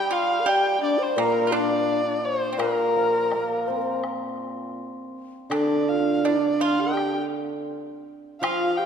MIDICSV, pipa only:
0, 0, Header, 1, 2, 480
1, 0, Start_track
1, 0, Tempo, 711744
1, 1749, Time_signature, 4, 2, 24, 8
1, 2234, Tempo, 731707
1, 5870, End_track
2, 0, Start_track
2, 0, Title_t, "Pipa"
2, 0, Program_c, 0, 105
2, 71, Note_on_c, 0, 65, 89
2, 297, Note_off_c, 0, 65, 0
2, 310, Note_on_c, 0, 67, 90
2, 763, Note_off_c, 0, 67, 0
2, 796, Note_on_c, 0, 58, 82
2, 973, Note_off_c, 0, 58, 0
2, 992, Note_on_c, 0, 65, 67
2, 1027, Note_on_c, 0, 62, 89
2, 1034, Note_off_c, 0, 65, 0
2, 1674, Note_off_c, 0, 62, 0
2, 1703, Note_on_c, 0, 60, 57
2, 1745, Note_off_c, 0, 60, 0
2, 1748, Note_on_c, 0, 58, 68
2, 2682, Note_off_c, 0, 58, 0
2, 3679, Note_on_c, 0, 62, 74
2, 4135, Note_off_c, 0, 62, 0
2, 4161, Note_on_c, 0, 62, 83
2, 4383, Note_off_c, 0, 62, 0
2, 4398, Note_on_c, 0, 65, 81
2, 4621, Note_off_c, 0, 65, 0
2, 4621, Note_on_c, 0, 62, 81
2, 4732, Note_off_c, 0, 62, 0
2, 5589, Note_on_c, 0, 65, 80
2, 5870, Note_off_c, 0, 65, 0
2, 5870, End_track
0, 0, End_of_file